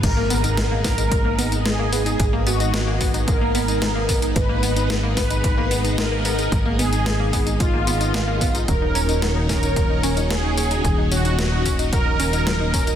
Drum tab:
CC |x---------------|----------------|----------------|----------------|
HH |x-oxx-oxx-oxx-ox|x-oxx-oxx-oxx-ox|x-oxx-oxx-oxx-ox|x-oxx-oxx-oxx-ox|
TB |x-xxx-xxx-xxx-xx|x-xxx-xxx-xxx-xx|x-xxx-xxx-xxx-xx|x-xxx-xxx-xxx-xx|
SD |----o-o-----o---|----o-------o---|----o-o-----o---|----o-------o---|
BD |o-----o-o-------|o-----o-o-----o-|o-----o-o-------|o-----o-o-----o-|

CC |----------------|----------------|
HH |x-oxx-oxx-oxx-ox|x-oxx-oxx-oxx-ox|
TB |x-xxx-xxx-xxx-xx|x-xxx-xxx-xxx-xx|
SD |----o-o-----o---|----o-------o---|
BD |o-----o-o-------|o-----o-o-----o-|